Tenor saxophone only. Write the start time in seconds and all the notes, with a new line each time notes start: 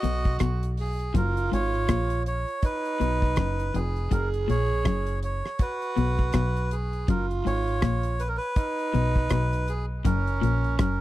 Already playing: F#4
1.14 F4
2.63 D#4
4.12 G#4
5.60 F#4
7.09 F4
8.57 D#4
10.05 C#4